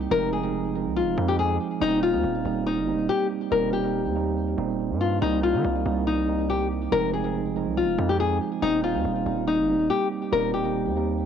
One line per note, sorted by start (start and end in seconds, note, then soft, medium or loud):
0.00 0.13 G3 loud
0.00 0.13 A#3 loud
0.00 0.12 C4 loud
0.00 0.12 D#4 loud
0.11 0.87 F1 loud
0.11 0.39 F3 loud
0.11 0.39 G#3 loud
0.11 0.39 C4 medium
0.11 0.40 D#4 loud
0.11 0.28 A#4 loud
0.33 0.93 G#4 medium
0.42 0.71 F3 medium
0.42 0.71 G#3 medium
0.42 0.71 C4 medium
0.42 0.71 D#4 medium
0.74 1.11 F3 medium
0.74 1.12 G#3 medium
0.74 1.12 C4 medium
0.74 1.12 D#4 medium
0.86 1.03 C2 loud
0.96 1.26 F4 medium
1.02 1.17 F1 loud
1.16 1.58 F2 loud
1.16 1.72 F3 medium
1.16 1.73 G#3 medium
1.16 1.73 C4 medium
1.16 1.73 D#4 medium
1.28 1.37 G4 medium
1.39 1.56 G#4 medium
1.80 2.15 D#1 loud
1.80 2.09 G3 loud
1.80 2.09 A#3 loud
1.80 2.09 C4 loud
1.80 1.99 D#4 loud
1.80 2.10 D#4 loud
2.03 2.63 F4 medium
2.12 2.24 D#2 loud
2.12 2.40 G3 medium
2.12 2.41 A#3 medium
2.12 2.41 C4 medium
2.12 2.41 D#4 medium
2.24 2.44 D#1 loud
2.44 2.79 D#1 loud
2.44 2.82 G3 medium
2.44 2.82 A#3 medium
2.44 2.82 C4 medium
2.44 2.83 D#4 medium
2.67 3.07 D#4 medium
2.77 2.95 G1 loud
2.87 3.43 G3 medium
2.87 3.43 A#3 medium
2.87 3.43 C4 medium
2.87 3.44 D#4 medium
2.93 3.08 D#1 loud
3.09 3.26 G4 medium
3.51 4.06 D#1 loud
3.51 3.79 G3 loud
3.51 3.79 A#3 loud
3.51 3.79 C4 loud
3.51 3.80 D#4 loud
3.51 3.69 A#4 loud
3.73 4.97 G4 medium
3.83 4.11 G3 medium
3.83 4.11 A#3 medium
3.83 4.11 C4 medium
3.83 4.12 D#4 medium
4.05 4.55 D#2 loud
4.15 4.52 G3 medium
4.15 4.52 A#3 medium
4.15 4.53 C4 medium
4.15 4.53 D#4 medium
4.57 4.91 D#1 loud
4.57 5.13 G3 medium
4.57 5.13 A#3 medium
4.57 5.14 C4 medium
4.57 5.14 D#4 loud
4.90 5.20 G2 loud
5.01 5.18 F4 medium
5.21 5.55 C2 loud
5.21 5.49 G3 loud
5.21 5.49 A#3 loud
5.21 5.50 C4 medium
5.21 5.39 D#4 loud
5.21 5.50 D#4 loud
5.43 6.03 F4 medium
5.53 5.64 D#3 loud
5.53 5.81 G3 medium
5.53 5.81 A#3 medium
5.53 5.82 C4 medium
5.53 5.82 D#4 medium
5.64 5.85 C2 loud
5.85 6.88 C2 loud
5.85 6.22 G3 medium
5.85 6.23 A#3 medium
5.85 6.23 C4 medium
5.85 6.23 D#4 medium
6.07 6.47 D#4 medium
6.27 6.83 G3 medium
6.27 6.83 A#3 medium
6.27 6.84 C4 medium
6.27 6.84 D#4 medium
6.50 6.67 G4 medium
6.91 7.68 F1 loud
6.91 7.19 F3 loud
6.91 7.20 G#3 loud
6.91 7.20 C4 medium
6.91 7.20 D#4 loud
6.91 7.09 A#4 loud
7.13 7.73 G#4 medium
7.23 7.51 F3 medium
7.23 7.52 G#3 medium
7.23 7.52 C4 medium
7.23 7.52 D#4 medium
7.55 7.92 F3 medium
7.55 7.93 G#3 medium
7.55 7.93 C4 medium
7.55 7.93 D#4 medium
7.67 7.84 C2 loud
7.77 8.07 F4 medium
7.83 7.98 F1 loud
7.97 8.39 F2 loud
7.97 8.53 F3 medium
7.97 8.54 G#3 medium
7.97 8.54 C4 medium
7.97 8.54 D#4 medium
8.09 8.18 G4 medium
8.20 8.37 G#4 medium
8.61 8.96 D#1 loud
8.61 8.89 G3 loud
8.61 8.90 A#3 medium
8.61 8.90 C4 loud
8.61 8.79 D#4 loud
8.61 8.90 D#4 loud
8.84 9.44 F4 medium
8.93 9.04 D#2 loud
8.93 9.21 G3 medium
8.93 9.22 A#3 medium
8.93 9.22 C4 medium
8.93 9.22 D#4 medium
9.05 9.25 D#1 loud
9.25 9.60 D#1 loud
9.25 9.63 G3 medium
9.25 9.63 A#3 medium
9.25 9.63 C4 medium
9.25 9.64 D#4 medium
9.47 9.87 D#4 medium
9.58 9.76 G1 loud
9.68 10.24 G3 medium
9.68 10.24 A#3 medium
9.68 10.24 C4 medium
9.68 10.25 D#4 medium
9.74 9.89 D#1 loud
9.90 10.07 G4 medium
10.31 10.87 D#1 loud
10.31 10.60 G3 loud
10.31 10.60 A#3 medium
10.31 10.60 C4 loud
10.31 10.61 D#4 loud
10.31 10.50 A#4 loud
10.54 11.26 G4 medium
10.64 10.92 G3 medium
10.64 10.92 A#3 medium
10.64 10.92 C4 medium
10.64 10.93 D#4 medium
10.86 11.26 D#2 loud
10.95 11.26 G3 medium
10.95 11.26 A#3 medium
10.95 11.26 C4 medium
10.95 11.26 D#4 medium